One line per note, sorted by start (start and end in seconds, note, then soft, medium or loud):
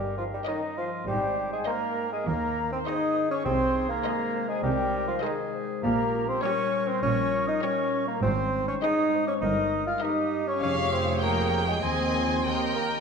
0.00 0.35 G1 medium
0.00 0.35 G2 medium
0.00 1.10 G2 soft
0.00 0.18 G3 medium
0.00 0.46 C#4 soft
0.00 0.16 D#4 soft
0.00 0.17 G4 medium
0.00 0.49 A#4 medium
0.00 0.76 D#5 soft
0.17 0.24 F3 medium
0.17 0.25 F3 medium
0.17 1.36 D#4 soft
0.17 0.24 F4 medium
0.17 0.32 F5 soft
0.32 0.40 G3 soft
0.32 0.40 G3 medium
0.32 0.50 G4 soft
0.32 0.38 G5 medium
0.47 0.61 D#3 medium
0.47 0.62 D#3 medium
0.47 1.09 C#4 soft
0.47 0.79 D#4 medium
0.47 0.92 A#4 medium
0.47 0.92 C#5 medium
0.47 0.91 D#5 medium
0.47 0.76 D#5 medium
0.47 1.07 D#5 medium
0.77 1.07 F3 medium
0.77 0.91 F3 medium
0.77 1.07 F4 medium
0.77 1.96 D#5 soft
0.77 0.84 F5 medium
1.07 1.55 G#1 medium
1.07 3.48 G#2 medium
1.07 1.55 G#2 medium
1.07 1.51 G3 medium
1.07 1.52 G3 medium
1.07 1.52 G4 medium
1.07 1.66 C5 medium
1.07 1.51 G5 medium
1.37 2.56 D#4 soft
1.52 1.66 G#3 medium
1.52 1.60 G#3 medium
1.52 1.60 G#4 medium
1.52 1.67 G#5 medium
1.66 2.14 A#3 medium
1.66 2.11 A#3 medium
1.66 2.86 C4 soft
1.66 2.57 A#4 medium
1.66 2.11 A#4 medium
1.66 2.11 C5 medium
1.66 2.12 C5 medium
1.66 2.11 D#5 medium
1.66 2.12 A#5 medium
1.97 3.15 D#5 medium
2.11 2.18 G#3 medium
2.11 2.26 G#3 medium
2.11 2.27 G#4 medium
2.11 2.17 G#5 medium
2.25 2.74 D#2 medium
2.25 3.48 D#3 soft
2.25 2.70 A#3 medium
2.25 2.71 A#3 medium
2.25 2.71 A#4 medium
2.25 2.71 A#5 medium
2.57 3.73 D#4 medium
2.72 2.79 C4 medium
2.72 2.87 C5 medium
2.72 2.86 C6 medium
2.86 3.30 D#4 medium
2.86 3.41 G#4 medium
2.86 3.30 C5 medium
2.86 3.31 C5 medium
2.86 3.30 D#5 medium
2.86 3.19 D#5 medium
2.86 3.31 D#6 medium
3.16 5.86 D#5 soft
3.31 3.45 C#4 medium
3.31 3.44 C#4 medium
3.31 3.45 C#5 medium
3.31 3.46 C#6 medium
3.45 3.92 C2 medium
3.45 3.92 C3 medium
3.45 4.62 C3 medium
3.45 3.88 C4 medium
3.45 3.89 C4 medium
3.45 4.61 G#4 medium
3.45 3.92 C5 medium
3.45 3.90 C6 medium
3.75 4.92 D#4 soft
3.89 4.50 A#3 medium
3.89 4.48 A#3 medium
3.89 4.49 A#4 medium
3.89 4.48 A#5 medium
4.04 5.21 G#3 medium
4.04 4.49 G#4 medium
4.04 4.48 C5 medium
4.04 4.48 D#5 medium
4.33 5.52 C5 medium
4.48 4.64 G#3 medium
4.48 4.63 G#3 medium
4.48 4.62 G#4 medium
4.48 4.63 G#5 medium
4.62 5.10 C2 medium
4.62 5.85 C3 medium
4.62 5.10 C3 medium
4.62 5.07 G3 medium
4.62 5.08 G3 medium
4.62 5.07 G4 medium
4.62 5.24 A#4 medium
4.62 5.07 G5 medium
4.93 5.85 D#4 soft
5.07 5.24 F3 medium
5.07 5.15 F3 medium
5.07 5.15 F4 medium
5.07 5.22 F5 medium
5.22 5.53 D#3 medium
5.22 5.36 D#3 medium
5.22 5.85 G#3 medium
5.22 5.36 D#4 medium
5.22 5.84 G#4 medium
5.22 5.68 G#4 medium
5.22 5.67 C5 medium
5.22 5.29 D#5 medium
5.22 5.68 D#5 medium
5.53 5.86 C5 medium
5.82 6.30 A#1 medium
5.82 7.02 A#2 medium
5.82 6.30 A#2 medium
5.82 6.30 A#3 medium
5.82 6.25 A#3 medium
5.82 6.44 G4 medium
5.82 6.25 A#4 medium
5.82 6.24 A#5 medium
6.13 7.32 C#4 medium
6.28 6.42 C4 medium
6.28 6.35 C4 medium
6.28 6.43 C5 medium
6.28 6.43 C6 medium
6.42 7.61 G3 medium
6.42 6.90 C#4 loud
6.42 6.87 C#4 medium
6.42 6.88 G4 medium
6.42 8.22 A#4 medium
6.42 6.87 C#5 medium
6.42 6.90 C#5 medium
6.42 6.88 C#5 medium
6.42 6.87 C#6 medium
6.88 7.02 C4 medium
6.88 7.03 C4 medium
6.88 7.05 C5 medium
6.88 7.03 C6 medium
7.02 7.50 A#1 medium
7.02 8.25 A#2 medium
7.02 7.50 A#2 medium
7.02 7.47 C#4 loud
7.02 7.47 C#4 medium
7.02 7.49 C#5 medium
7.02 7.46 C#6 medium
7.33 8.25 C#4 medium
7.47 7.63 D#4 medium
7.47 7.65 D#5 medium
7.47 7.53 D#6 medium
7.62 8.25 G3 soft
7.62 8.08 C#4 medium
7.62 8.07 C#4 medium
7.62 8.07 G4 medium
7.62 8.07 C#5 medium
7.62 8.08 C#5 medium
7.62 8.06 C#6 medium
7.93 8.25 C#5 medium
8.07 8.22 A#3 medium
8.07 8.23 A#3 medium
8.07 8.15 A#4 medium
8.07 8.22 A#5 medium
8.22 8.70 G#1 medium
8.22 9.45 G#2 medium
8.22 8.70 G#2 medium
8.22 8.67 C4 medium
8.22 8.68 C4 medium
8.22 8.82 C5 medium
8.22 8.67 C5 medium
8.22 8.67 C6 medium
8.53 9.71 D#4 soft
8.67 8.82 C#4 medium
8.67 8.75 C#4 medium
8.67 8.76 C#5 medium
8.67 8.73 C#6 medium
8.82 9.45 G#3 soft
8.82 9.26 D#4 medium
8.82 9.27 D#4 loud
8.82 9.28 G#4 medium
8.82 9.21 G#4 medium
8.82 9.27 C5 medium
8.82 9.27 D#5 medium
8.82 9.31 D#5 medium
8.82 9.26 D#6 medium
9.13 9.45 C5 medium
9.27 9.42 C#4 medium
9.27 9.34 C#4 medium
9.27 9.42 C#5 medium
9.27 9.42 C#6 medium
9.41 9.90 G1 medium
9.41 9.90 G2 medium
9.41 10.65 G2 medium
9.41 9.86 D#4 medium
9.41 9.99 A#4 medium
9.41 9.87 D#5 medium
9.41 9.86 D#6 medium
9.72 10.65 D#4 soft
9.86 9.93 F4 medium
9.86 10.04 F4 medium
9.86 10.02 F5 medium
9.86 10.01 F6 medium
10.01 10.65 A#3 soft
10.01 10.49 D#4 medium
10.01 10.47 D#4 medium
10.01 11.80 G4 medium
10.01 10.47 A#4 medium
10.01 10.48 A#4 medium
10.01 10.47 D#5 medium
10.01 10.51 D#5 medium
10.01 10.46 D#6 medium
10.32 10.65 A#4 medium
10.47 10.54 C#4 medium
10.47 10.62 C#4 medium
10.47 10.63 C#5 medium
10.47 10.62 C#6 medium
10.61 11.79 F1 medium
10.61 11.79 F2 medium
10.61 11.85 F3 medium
10.61 10.75 C#4 medium
10.61 10.76 C#4 medium
10.61 11.79 G#4 medium
10.61 11.79 C#5 medium
10.61 10.95 C#5 medium
10.61 11.19 F5 medium
10.61 10.92 C#6 medium
10.91 11.05 C4 medium
10.91 11.22 C4 medium
10.91 11.22 C5 medium
10.91 11.85 C#5 soft
10.91 11.01 C6 medium
11.21 11.66 A#3 medium
11.21 11.70 A#3 medium
11.21 11.85 F4 soft
11.21 11.66 A#4 medium
11.21 11.82 G5 medium
11.21 11.67 A#5 medium
11.66 11.82 G#3 medium
11.66 11.84 G#3 medium
11.66 11.82 G#4 medium
11.66 11.74 G#5 medium
11.82 13.00 D#2 medium
11.82 12.43 D#3 medium
11.82 12.75 C4 medium
11.82 12.74 C4 medium
11.82 11.97 G#4 medium
11.82 12.44 G#4 medium
11.82 12.74 C5 medium
11.82 12.44 D#5 soft
11.82 12.44 G#5 medium
11.82 12.74 C6 medium
12.14 12.47 F4 medium
12.14 12.47 G#4 soft
12.44 13.00 D#3 soft
12.44 13.00 G4 soft
12.44 13.00 A#4 medium
12.44 13.00 D#5 soft
12.44 13.00 G5 soft
12.75 12.90 A#3 medium
12.75 12.91 A#3 soft
12.75 13.00 G4 soft
12.75 13.00 A#4 medium
12.75 13.00 A#5 medium